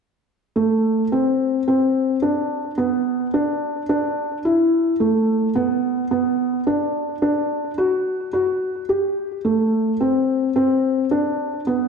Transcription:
felt piano
0.56 A3
1.12 C4
1.68 C4
2.22 D4
2.78 B3
3.34 D4
3.89 D4
4.45 E4
5.00 A3
5.55 B3
6.11 B3
6.67 D4
7.22 D4
7.78 F#4
8.33 F#4
8.89 G4
9.45 A3
10.00 C4
10.56 C4
11.11 D4
11.67 B3

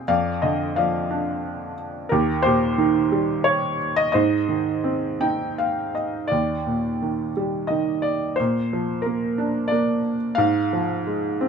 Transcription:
felt piano
Already playing: G5
0.08 F2 D5 F5
0.42 D3 D#5
0.76 F3 D5 F5
1.11 D4
2.09 D#2 G4 A#4
2.42 A#2 G4 C5
2.78 D#3
3.12 G3
3.44 C#5
3.96 D#5
4.12 G#2 C5 D#5
4.49 D#3
4.84 C4
5.21 D#4 G5
5.58 F5
5.95 D#5
6.28 D5
6.32 D#2
6.67 A#2
7.02 D#3
7.37 G3
7.67 D#3 D#5
8.02 D5
8.36 A#2 C5
8.73 F3
9.02 A#4
9.06 A#3
9.38 D4
9.68 A#3 D5
10.35 G#2 F5
10.73 F3
11.07 G#3
11.41 C4

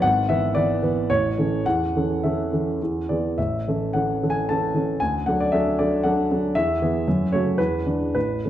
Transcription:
grand piano
0.02 G#1 F#5
0.29 E3 B3 B4 E5
0.55 E3 B3 B4 D5
0.82 E3 B3 B4
1.10 A1 C#5
1.38 E3 C#4 A4
1.66 E2 F#5
1.96 E3 C#4 A4
2.23 E3 C#4 A4 E5
2.53 E3 C#4 A4
2.81 E2
3.09 E3 B3 G#4 D5
3.38 A1 E5
3.68 E3 C#4 A4
3.93 E3 C#4 A4 F#5
4.23 E3 C#4 A4
4.30 G#5
4.49 E3 C#4 A4 A5
4.74 E3 C#4 A4
5.00 D2 G#5
5.26 F#3 D4 A4 F#5
5.40 D5
5.52 F#3 D4 A4 E5
5.79 F#3 D4 A4 D5
6.03 F#3 D4 A4 F#5
6.31 F#3 D4 A4
6.55 E2 E5
6.82 E3 B3 G#4
7.08 F#2
7.32 C#3 A3 F#4 C#5
7.58 E2 B4
7.86 E3 G#3 D4
8.15 A1 B4
8.45 E3 A3 C#4

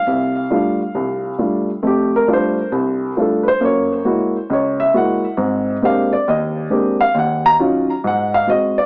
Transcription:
grand piano
Already playing: F5
0.07 C2 C3
0.50 G3 A3 D4 F4
0.95 C2 C3
1.38 G3 A3 D4 F4
1.83 F2 A3
1.87 G4
2.16 A#4
2.28 G3 A3 D4 F4
2.33 C5
2.72 C2
3.17 G3 A3 D4 F4
3.22 A4
3.43 B4
3.48 C5
3.61 F#2 A#3
3.65 C#5
4.05 G#3 A#3 E4 F#4
4.50 C#2 C#5
4.80 E5
4.94 G#3 A#3 E4 F#4 F#5
5.37 G#2 C4
5.82 G#3 A#3 C4 D4 G4 F5
6.13 D5
6.28 D#2 D#5
6.70 G#3 A#3 C4 D4 G4
7.01 F5
7.14 D#2
7.19 F#5
7.46 A#5
7.59 F#3 C#4 D#4 F4
8.04 G#2 F#5
8.34 F5
8.47 G#3 C4 F#4 D#5
8.78 D5

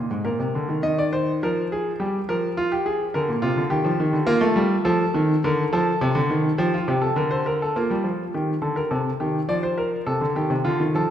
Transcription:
grand piano
Already playing: D#5
0.11 G#2
0.25 A#2 A#4
0.39 C3
0.55 D3
0.69 D#3
0.83 D#3 D#5
0.99 D5
1.13 C5
1.43 F3 A#4
1.72 G#4
2.00 G3 G4
2.29 F3 A#4
2.57 F4
2.72 G4
2.86 G#4
3.14 D3 A#4
3.29 A#2
3.42 C3 F4
3.56 D3
3.70 D#3 G4
3.84 F3
4.00 D#3
4.13 D3
4.27 A#3 F4
4.41 A3
4.56 G3
4.85 F3 A4
5.14 D#3
5.44 D3 A#4
5.73 F3 A4
6.01 C3
6.15 D3
6.30 D#3
6.58 F3 G4
6.74 F4
6.88 C3 G4
7.01 A4
7.16 D3 A#4
7.31 C5
7.46 A#4
7.62 A4
7.76 A#3 F4
7.90 G3
8.04 F3
8.34 D#3 G4
8.62 D3 A4
8.76 A#4
8.91 C3 A4
9.20 D#3 G4
9.48 F3 D5
9.63 C5
9.78 A#4
10.06 C3 A4
10.21 D3
10.35 D#3 G4
10.50 C3
10.65 D3 F4
10.80 D#3
10.95 F3 A4

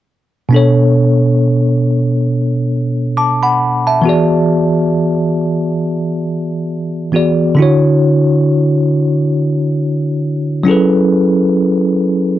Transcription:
tine electric piano
0.49 B2 B3 D4
0.54 A4 C#5
3.17 A5 D6
3.43 F#5 B5
3.87 E5 A5
4.02 E3 B3 F#4
4.07 G#4 D5
7.12 E3 B3 F#4 G#4 D5
7.55 D3 D4 E4
7.60 F#4 C#5
10.63 F#3 C#4 E4
10.68 G#4 A4 B4

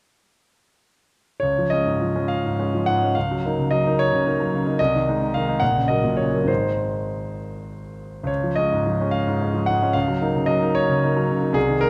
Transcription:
grand piano
1.40 C#2 C#5
1.58 F3
1.70 G#3 C#4 D#5
1.85 G#2
2.01 F3
2.15 G#3 C#4
2.28 F5
2.45 G#2
2.59 G#3 C#4
2.74 F3
2.86 G#2 F#5
3.03 G#3 C#4
3.15 C#2 F5
3.31 F#3
3.45 A#3 D#4
3.59 C#3
3.71 F#3 D#5
3.87 A#3 D#4
3.99 C#5
4.13 C#3
4.25 A#3 D#4
4.40 F#3
4.54 C#3
4.66 A#3 D#4
4.79 C2 D#5
4.95 D#3
5.09 G#3 D#4
5.21 C3
5.34 D#3 F5
5.48 G#3 D#4
5.60 A#1 F#5
5.76 C#3
5.88 F#3 A#3 D#5
6.04 A#2
6.17 C#3 C#5
6.34 F#3 A#3
6.44 G#1 D#3 G#3 D#4 C5
8.23 C#2 C#5
8.44 F3
8.56 G#3 C#4 D#5
8.72 G#2
8.87 F3
9.01 G#3 C#4
9.11 F5
9.27 G#2
9.42 G#3 C#4
9.54 F3
9.66 G#2 F#5
9.82 G#3 C#4
9.93 C#2 F5
10.08 F#3
10.21 A#3 D#4
10.35 C#3
10.46 F#3 D#5
10.62 A#3 D#4
10.75 C#5
10.89 C#3
11.03 A#3 D#4
11.17 F#3
11.29 C#3
11.42 A#3 D#4
11.53 C2 G#4
11.69 D#3
11.81 G#3 D#4 A#4

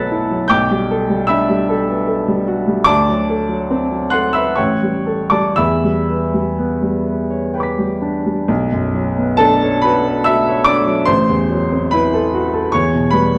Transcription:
grand piano
Already playing: B1 F#3 B3 A4 B4 F#5 A5 B5 C#6 E6 F#6 A6 B6
0.11 E4
0.31 F#3
0.48 B1 G5 D6 G6
0.71 G3
0.91 A4
1.10 G3
1.27 D4 E5 B5 E6
1.49 G3
1.69 A4
1.88 B4
2.07 A4
2.28 G3
2.47 F#4
2.68 G3
2.84 D2 D5 A5 D6
3.09 F#3
3.29 A4
3.49 F#3
3.70 C4
3.91 F#3
4.10 A4 F#5 C6 F#6
4.33 B4 E5 B5 E6
4.55 A1 C#5 G5 C#6
4.83 G3
5.06 A4
5.30 G3 D5 A5 D6
5.56 E2 E5 B5 E6
5.84 G3
6.09 B4
6.34 G3
6.58 B3
6.82 G3
7.06 B4
7.30 C#5
7.54 B4 G5 B5
7.60 D6 B6
7.79 G3
8.02 D4
8.26 G3
8.48 B1
8.72 F#2
8.94 F#3
9.18 B3
9.37 D4 A4 A5
9.62 C#5
9.82 F#4 B4 B5
10.06 B4
10.24 F#4 E5 E6
10.48 C#5
10.64 D4 D5 D6
10.86 F#3
11.05 A1 C5 C6
11.29 E2
11.50 F#3
11.72 C4
11.91 E4 B4 B5
12.14 A4
12.34 F#4
12.53 A4
12.72 E2 C#5 C#6
12.95 B2
13.11 G3 B4 B5
13.34 B3

